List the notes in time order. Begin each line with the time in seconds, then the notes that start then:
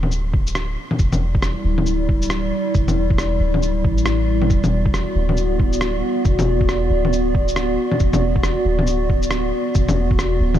Already playing: D1
0.03 low bongo
0.11 shaker
0.34 kick
0.47 shaker
0.55 cross-stick, shaker
0.91 low bongo
0.99 E1 G3 E4 D5, kick, shaker
1.12 low bongo, shaker
1.35 kick
1.43 cross-stick, shaker
1.65 D1
1.78 low bongo
1.86 shaker
2.09 kick
2.22 shaker
2.30 cross-stick, shaker
2.75 E1, kick, shaker
2.88 low bongo, shaker
3.10 E1, kick
3.18 cross-stick, shaker
3.40 D1
3.54 low bongo
3.62 shaker
3.84 A1, kick
3.98 shaker
4.06 cross-stick, shaker
4.42 low bongo
4.50 E1 B3 F#4, kick, shaker
4.64 low bongo, shaker
4.86 kick
4.94 cross-stick, shaker
5.16 D1
5.29 low bongo
5.37 shaker
5.59 kick
5.73 shaker
5.81 cross-stick, shaker
6.25 E1, kick, shaker
6.39 low bongo, shaker
6.61 E1, kick
6.69 cross-stick, shaker
6.90 D1
7.05 low bongo
7.13 shaker
7.35 kick
7.48 shaker
7.56 cross-stick, shaker
7.92 low bongo
8.00 E1, kick, shaker
8.13 low bongo, shaker
8.36 kick
8.43 cross-stick, shaker
8.65 D1
8.79 low bongo
8.87 shaker
9.10 kick
9.22 shaker
9.31 cross-stick, shaker
9.75 E1, kick, shaker
9.88 low bongo, shaker
10.11 E1, kick
10.19 cross-stick, shaker
10.41 D1
10.54 low bongo, shaker